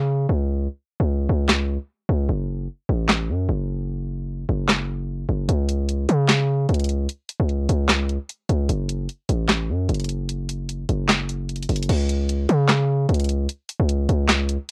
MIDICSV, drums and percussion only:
0, 0, Header, 1, 2, 480
1, 0, Start_track
1, 0, Tempo, 400000
1, 828, Time_signature, 4, 2, 24, 8
1, 17656, End_track
2, 0, Start_track
2, 0, Title_t, "Drums"
2, 1783, Note_on_c, 9, 39, 91
2, 1788, Note_on_c, 9, 38, 112
2, 1903, Note_off_c, 9, 39, 0
2, 1908, Note_off_c, 9, 38, 0
2, 3703, Note_on_c, 9, 39, 94
2, 3708, Note_on_c, 9, 38, 114
2, 3823, Note_off_c, 9, 39, 0
2, 3828, Note_off_c, 9, 38, 0
2, 5622, Note_on_c, 9, 39, 90
2, 5626, Note_on_c, 9, 38, 117
2, 5742, Note_off_c, 9, 39, 0
2, 5746, Note_off_c, 9, 38, 0
2, 6588, Note_on_c, 9, 42, 86
2, 6708, Note_off_c, 9, 42, 0
2, 6827, Note_on_c, 9, 42, 86
2, 6947, Note_off_c, 9, 42, 0
2, 7067, Note_on_c, 9, 42, 70
2, 7187, Note_off_c, 9, 42, 0
2, 7307, Note_on_c, 9, 42, 72
2, 7427, Note_off_c, 9, 42, 0
2, 7542, Note_on_c, 9, 39, 93
2, 7546, Note_on_c, 9, 38, 115
2, 7547, Note_on_c, 9, 42, 81
2, 7662, Note_off_c, 9, 39, 0
2, 7666, Note_off_c, 9, 38, 0
2, 7667, Note_off_c, 9, 42, 0
2, 8027, Note_on_c, 9, 42, 51
2, 8091, Note_off_c, 9, 42, 0
2, 8091, Note_on_c, 9, 42, 65
2, 8155, Note_off_c, 9, 42, 0
2, 8155, Note_on_c, 9, 42, 70
2, 8211, Note_off_c, 9, 42, 0
2, 8211, Note_on_c, 9, 42, 81
2, 8268, Note_off_c, 9, 42, 0
2, 8268, Note_on_c, 9, 42, 63
2, 8388, Note_off_c, 9, 42, 0
2, 8508, Note_on_c, 9, 42, 89
2, 8628, Note_off_c, 9, 42, 0
2, 8748, Note_on_c, 9, 42, 91
2, 8868, Note_off_c, 9, 42, 0
2, 8989, Note_on_c, 9, 42, 68
2, 9109, Note_off_c, 9, 42, 0
2, 9228, Note_on_c, 9, 42, 72
2, 9348, Note_off_c, 9, 42, 0
2, 9463, Note_on_c, 9, 39, 91
2, 9468, Note_on_c, 9, 38, 116
2, 9469, Note_on_c, 9, 42, 82
2, 9583, Note_off_c, 9, 39, 0
2, 9588, Note_off_c, 9, 38, 0
2, 9589, Note_off_c, 9, 42, 0
2, 9709, Note_on_c, 9, 42, 75
2, 9829, Note_off_c, 9, 42, 0
2, 9949, Note_on_c, 9, 42, 80
2, 10069, Note_off_c, 9, 42, 0
2, 10189, Note_on_c, 9, 42, 62
2, 10309, Note_off_c, 9, 42, 0
2, 10428, Note_on_c, 9, 42, 87
2, 10548, Note_off_c, 9, 42, 0
2, 10668, Note_on_c, 9, 42, 82
2, 10788, Note_off_c, 9, 42, 0
2, 10909, Note_on_c, 9, 42, 68
2, 11029, Note_off_c, 9, 42, 0
2, 11149, Note_on_c, 9, 42, 72
2, 11269, Note_off_c, 9, 42, 0
2, 11383, Note_on_c, 9, 39, 92
2, 11388, Note_on_c, 9, 38, 112
2, 11389, Note_on_c, 9, 42, 82
2, 11503, Note_off_c, 9, 39, 0
2, 11508, Note_off_c, 9, 38, 0
2, 11509, Note_off_c, 9, 42, 0
2, 11869, Note_on_c, 9, 42, 50
2, 11933, Note_off_c, 9, 42, 0
2, 11933, Note_on_c, 9, 42, 64
2, 11996, Note_off_c, 9, 42, 0
2, 11996, Note_on_c, 9, 42, 73
2, 12052, Note_off_c, 9, 42, 0
2, 12052, Note_on_c, 9, 42, 83
2, 12108, Note_off_c, 9, 42, 0
2, 12108, Note_on_c, 9, 42, 64
2, 12228, Note_off_c, 9, 42, 0
2, 12348, Note_on_c, 9, 42, 87
2, 12468, Note_off_c, 9, 42, 0
2, 12588, Note_on_c, 9, 42, 90
2, 12708, Note_off_c, 9, 42, 0
2, 12828, Note_on_c, 9, 42, 68
2, 12948, Note_off_c, 9, 42, 0
2, 13068, Note_on_c, 9, 42, 72
2, 13188, Note_off_c, 9, 42, 0
2, 13302, Note_on_c, 9, 39, 92
2, 13307, Note_on_c, 9, 38, 114
2, 13308, Note_on_c, 9, 42, 80
2, 13422, Note_off_c, 9, 39, 0
2, 13427, Note_off_c, 9, 38, 0
2, 13428, Note_off_c, 9, 42, 0
2, 13548, Note_on_c, 9, 42, 74
2, 13668, Note_off_c, 9, 42, 0
2, 13789, Note_on_c, 9, 42, 52
2, 13868, Note_off_c, 9, 42, 0
2, 13868, Note_on_c, 9, 42, 58
2, 13949, Note_off_c, 9, 42, 0
2, 13949, Note_on_c, 9, 42, 65
2, 14028, Note_off_c, 9, 42, 0
2, 14028, Note_on_c, 9, 42, 70
2, 14028, Note_on_c, 9, 46, 49
2, 14109, Note_off_c, 9, 42, 0
2, 14109, Note_on_c, 9, 42, 74
2, 14148, Note_off_c, 9, 46, 0
2, 14189, Note_off_c, 9, 42, 0
2, 14189, Note_on_c, 9, 42, 86
2, 14269, Note_off_c, 9, 42, 0
2, 14269, Note_on_c, 9, 42, 89
2, 14269, Note_on_c, 9, 49, 100
2, 14389, Note_off_c, 9, 42, 0
2, 14389, Note_off_c, 9, 49, 0
2, 14509, Note_on_c, 9, 42, 81
2, 14629, Note_off_c, 9, 42, 0
2, 14749, Note_on_c, 9, 42, 70
2, 14869, Note_off_c, 9, 42, 0
2, 14989, Note_on_c, 9, 42, 73
2, 15109, Note_off_c, 9, 42, 0
2, 15223, Note_on_c, 9, 39, 95
2, 15228, Note_on_c, 9, 38, 114
2, 15229, Note_on_c, 9, 42, 85
2, 15343, Note_off_c, 9, 39, 0
2, 15348, Note_off_c, 9, 38, 0
2, 15349, Note_off_c, 9, 42, 0
2, 15709, Note_on_c, 9, 42, 54
2, 15773, Note_off_c, 9, 42, 0
2, 15773, Note_on_c, 9, 42, 67
2, 15836, Note_off_c, 9, 42, 0
2, 15836, Note_on_c, 9, 42, 73
2, 15893, Note_off_c, 9, 42, 0
2, 15893, Note_on_c, 9, 42, 84
2, 15949, Note_off_c, 9, 42, 0
2, 15949, Note_on_c, 9, 42, 65
2, 16069, Note_off_c, 9, 42, 0
2, 16189, Note_on_c, 9, 42, 91
2, 16309, Note_off_c, 9, 42, 0
2, 16429, Note_on_c, 9, 42, 92
2, 16549, Note_off_c, 9, 42, 0
2, 16669, Note_on_c, 9, 42, 70
2, 16789, Note_off_c, 9, 42, 0
2, 16910, Note_on_c, 9, 42, 76
2, 17030, Note_off_c, 9, 42, 0
2, 17144, Note_on_c, 9, 39, 92
2, 17148, Note_on_c, 9, 38, 115
2, 17150, Note_on_c, 9, 42, 85
2, 17264, Note_off_c, 9, 39, 0
2, 17268, Note_off_c, 9, 38, 0
2, 17270, Note_off_c, 9, 42, 0
2, 17389, Note_on_c, 9, 42, 76
2, 17509, Note_off_c, 9, 42, 0
2, 17656, End_track
0, 0, End_of_file